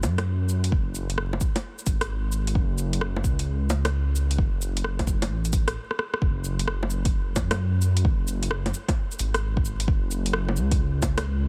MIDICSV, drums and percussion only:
0, 0, Header, 1, 2, 480
1, 0, Start_track
1, 0, Key_signature, 3, "minor"
1, 0, Tempo, 458015
1, 756, Time_signature, 4, 2, 24, 8
1, 12032, End_track
2, 0, Start_track
2, 0, Title_t, "Drums"
2, 34, Note_on_c, 9, 42, 41
2, 34, Note_on_c, 9, 61, 56
2, 34, Note_on_c, 9, 69, 71
2, 139, Note_off_c, 9, 42, 0
2, 139, Note_off_c, 9, 61, 0
2, 139, Note_off_c, 9, 69, 0
2, 192, Note_on_c, 9, 37, 101
2, 192, Note_on_c, 9, 42, 50
2, 192, Note_on_c, 9, 61, 61
2, 296, Note_off_c, 9, 37, 0
2, 296, Note_off_c, 9, 42, 0
2, 296, Note_off_c, 9, 61, 0
2, 515, Note_on_c, 9, 69, 68
2, 620, Note_off_c, 9, 69, 0
2, 671, Note_on_c, 9, 42, 51
2, 756, Note_on_c, 9, 36, 110
2, 776, Note_off_c, 9, 42, 0
2, 861, Note_off_c, 9, 36, 0
2, 995, Note_on_c, 9, 69, 72
2, 1099, Note_off_c, 9, 69, 0
2, 1150, Note_on_c, 9, 42, 49
2, 1234, Note_on_c, 9, 37, 90
2, 1255, Note_off_c, 9, 42, 0
2, 1339, Note_off_c, 9, 37, 0
2, 1394, Note_on_c, 9, 61, 49
2, 1474, Note_on_c, 9, 69, 73
2, 1477, Note_on_c, 9, 36, 96
2, 1499, Note_off_c, 9, 61, 0
2, 1579, Note_off_c, 9, 69, 0
2, 1581, Note_off_c, 9, 36, 0
2, 1631, Note_on_c, 9, 42, 52
2, 1631, Note_on_c, 9, 61, 61
2, 1736, Note_off_c, 9, 42, 0
2, 1736, Note_off_c, 9, 61, 0
2, 1872, Note_on_c, 9, 69, 43
2, 1954, Note_off_c, 9, 69, 0
2, 1954, Note_on_c, 9, 42, 41
2, 1954, Note_on_c, 9, 69, 75
2, 1955, Note_on_c, 9, 36, 97
2, 2059, Note_off_c, 9, 42, 0
2, 2059, Note_off_c, 9, 69, 0
2, 2060, Note_off_c, 9, 36, 0
2, 2108, Note_on_c, 9, 37, 98
2, 2108, Note_on_c, 9, 42, 54
2, 2213, Note_off_c, 9, 37, 0
2, 2213, Note_off_c, 9, 42, 0
2, 2433, Note_on_c, 9, 69, 71
2, 2538, Note_off_c, 9, 69, 0
2, 2592, Note_on_c, 9, 42, 52
2, 2675, Note_on_c, 9, 36, 110
2, 2697, Note_off_c, 9, 42, 0
2, 2780, Note_off_c, 9, 36, 0
2, 2915, Note_on_c, 9, 69, 71
2, 3020, Note_off_c, 9, 69, 0
2, 3072, Note_on_c, 9, 42, 51
2, 3157, Note_on_c, 9, 37, 96
2, 3177, Note_off_c, 9, 42, 0
2, 3262, Note_off_c, 9, 37, 0
2, 3316, Note_on_c, 9, 61, 51
2, 3396, Note_on_c, 9, 36, 92
2, 3399, Note_on_c, 9, 69, 72
2, 3421, Note_off_c, 9, 61, 0
2, 3501, Note_off_c, 9, 36, 0
2, 3503, Note_off_c, 9, 69, 0
2, 3554, Note_on_c, 9, 42, 54
2, 3659, Note_off_c, 9, 42, 0
2, 3877, Note_on_c, 9, 42, 42
2, 3877, Note_on_c, 9, 61, 64
2, 3877, Note_on_c, 9, 69, 77
2, 3982, Note_off_c, 9, 42, 0
2, 3982, Note_off_c, 9, 61, 0
2, 3982, Note_off_c, 9, 69, 0
2, 4035, Note_on_c, 9, 37, 96
2, 4035, Note_on_c, 9, 42, 52
2, 4035, Note_on_c, 9, 61, 66
2, 4139, Note_off_c, 9, 37, 0
2, 4139, Note_off_c, 9, 42, 0
2, 4139, Note_off_c, 9, 61, 0
2, 4358, Note_on_c, 9, 69, 73
2, 4463, Note_off_c, 9, 69, 0
2, 4515, Note_on_c, 9, 42, 52
2, 4595, Note_on_c, 9, 36, 114
2, 4620, Note_off_c, 9, 42, 0
2, 4700, Note_off_c, 9, 36, 0
2, 4840, Note_on_c, 9, 69, 75
2, 4944, Note_off_c, 9, 69, 0
2, 4996, Note_on_c, 9, 42, 56
2, 5076, Note_on_c, 9, 37, 94
2, 5101, Note_off_c, 9, 42, 0
2, 5181, Note_off_c, 9, 37, 0
2, 5230, Note_on_c, 9, 36, 55
2, 5232, Note_on_c, 9, 42, 31
2, 5232, Note_on_c, 9, 61, 53
2, 5315, Note_off_c, 9, 36, 0
2, 5315, Note_on_c, 9, 36, 97
2, 5319, Note_on_c, 9, 69, 75
2, 5337, Note_off_c, 9, 42, 0
2, 5337, Note_off_c, 9, 61, 0
2, 5420, Note_off_c, 9, 36, 0
2, 5424, Note_off_c, 9, 69, 0
2, 5472, Note_on_c, 9, 42, 55
2, 5472, Note_on_c, 9, 61, 64
2, 5577, Note_off_c, 9, 42, 0
2, 5577, Note_off_c, 9, 61, 0
2, 5711, Note_on_c, 9, 42, 31
2, 5711, Note_on_c, 9, 69, 43
2, 5794, Note_off_c, 9, 42, 0
2, 5794, Note_off_c, 9, 69, 0
2, 5794, Note_on_c, 9, 42, 45
2, 5794, Note_on_c, 9, 69, 77
2, 5795, Note_on_c, 9, 36, 96
2, 5899, Note_off_c, 9, 42, 0
2, 5899, Note_off_c, 9, 69, 0
2, 5900, Note_off_c, 9, 36, 0
2, 5949, Note_on_c, 9, 37, 102
2, 5949, Note_on_c, 9, 42, 56
2, 6054, Note_off_c, 9, 37, 0
2, 6054, Note_off_c, 9, 42, 0
2, 6192, Note_on_c, 9, 37, 53
2, 6278, Note_off_c, 9, 37, 0
2, 6278, Note_on_c, 9, 37, 74
2, 6382, Note_off_c, 9, 37, 0
2, 6432, Note_on_c, 9, 37, 79
2, 6516, Note_on_c, 9, 36, 121
2, 6536, Note_off_c, 9, 37, 0
2, 6621, Note_off_c, 9, 36, 0
2, 6755, Note_on_c, 9, 69, 73
2, 6860, Note_off_c, 9, 69, 0
2, 6910, Note_on_c, 9, 42, 58
2, 6996, Note_on_c, 9, 37, 97
2, 7015, Note_off_c, 9, 42, 0
2, 7100, Note_off_c, 9, 37, 0
2, 7154, Note_on_c, 9, 61, 52
2, 7233, Note_on_c, 9, 69, 72
2, 7259, Note_off_c, 9, 61, 0
2, 7338, Note_off_c, 9, 69, 0
2, 7390, Note_on_c, 9, 42, 57
2, 7392, Note_on_c, 9, 36, 106
2, 7495, Note_off_c, 9, 42, 0
2, 7496, Note_off_c, 9, 36, 0
2, 7714, Note_on_c, 9, 36, 58
2, 7714, Note_on_c, 9, 42, 48
2, 7714, Note_on_c, 9, 61, 66
2, 7714, Note_on_c, 9, 69, 73
2, 7818, Note_off_c, 9, 42, 0
2, 7818, Note_off_c, 9, 61, 0
2, 7818, Note_off_c, 9, 69, 0
2, 7819, Note_off_c, 9, 36, 0
2, 7870, Note_on_c, 9, 37, 105
2, 7870, Note_on_c, 9, 42, 59
2, 7870, Note_on_c, 9, 61, 69
2, 7975, Note_off_c, 9, 37, 0
2, 7975, Note_off_c, 9, 42, 0
2, 7975, Note_off_c, 9, 61, 0
2, 8192, Note_on_c, 9, 69, 73
2, 8297, Note_off_c, 9, 69, 0
2, 8349, Note_on_c, 9, 42, 59
2, 8435, Note_on_c, 9, 36, 124
2, 8454, Note_off_c, 9, 42, 0
2, 8539, Note_off_c, 9, 36, 0
2, 8674, Note_on_c, 9, 69, 72
2, 8779, Note_off_c, 9, 69, 0
2, 8830, Note_on_c, 9, 42, 59
2, 8915, Note_on_c, 9, 37, 109
2, 8935, Note_off_c, 9, 42, 0
2, 9020, Note_off_c, 9, 37, 0
2, 9073, Note_on_c, 9, 42, 33
2, 9073, Note_on_c, 9, 61, 53
2, 9160, Note_on_c, 9, 69, 70
2, 9178, Note_off_c, 9, 42, 0
2, 9178, Note_off_c, 9, 61, 0
2, 9265, Note_off_c, 9, 69, 0
2, 9310, Note_on_c, 9, 36, 104
2, 9313, Note_on_c, 9, 42, 60
2, 9313, Note_on_c, 9, 61, 63
2, 9415, Note_off_c, 9, 36, 0
2, 9418, Note_off_c, 9, 42, 0
2, 9418, Note_off_c, 9, 61, 0
2, 9553, Note_on_c, 9, 69, 40
2, 9635, Note_off_c, 9, 69, 0
2, 9635, Note_on_c, 9, 42, 49
2, 9635, Note_on_c, 9, 69, 72
2, 9740, Note_off_c, 9, 42, 0
2, 9740, Note_off_c, 9, 69, 0
2, 9793, Note_on_c, 9, 37, 108
2, 9793, Note_on_c, 9, 42, 58
2, 9898, Note_off_c, 9, 37, 0
2, 9898, Note_off_c, 9, 42, 0
2, 10029, Note_on_c, 9, 36, 106
2, 10116, Note_on_c, 9, 69, 69
2, 10133, Note_off_c, 9, 36, 0
2, 10221, Note_off_c, 9, 69, 0
2, 10270, Note_on_c, 9, 42, 59
2, 10353, Note_on_c, 9, 36, 124
2, 10375, Note_off_c, 9, 42, 0
2, 10458, Note_off_c, 9, 36, 0
2, 10595, Note_on_c, 9, 69, 71
2, 10700, Note_off_c, 9, 69, 0
2, 10750, Note_on_c, 9, 42, 56
2, 10830, Note_on_c, 9, 37, 104
2, 10855, Note_off_c, 9, 42, 0
2, 10935, Note_off_c, 9, 37, 0
2, 10988, Note_on_c, 9, 61, 51
2, 11073, Note_on_c, 9, 69, 71
2, 11093, Note_off_c, 9, 61, 0
2, 11178, Note_off_c, 9, 69, 0
2, 11228, Note_on_c, 9, 42, 61
2, 11229, Note_on_c, 9, 36, 109
2, 11333, Note_off_c, 9, 36, 0
2, 11333, Note_off_c, 9, 42, 0
2, 11553, Note_on_c, 9, 36, 61
2, 11553, Note_on_c, 9, 42, 46
2, 11553, Note_on_c, 9, 61, 60
2, 11553, Note_on_c, 9, 69, 72
2, 11658, Note_off_c, 9, 36, 0
2, 11658, Note_off_c, 9, 42, 0
2, 11658, Note_off_c, 9, 61, 0
2, 11658, Note_off_c, 9, 69, 0
2, 11713, Note_on_c, 9, 37, 112
2, 11713, Note_on_c, 9, 42, 57
2, 11713, Note_on_c, 9, 61, 64
2, 11818, Note_off_c, 9, 37, 0
2, 11818, Note_off_c, 9, 42, 0
2, 11818, Note_off_c, 9, 61, 0
2, 12032, End_track
0, 0, End_of_file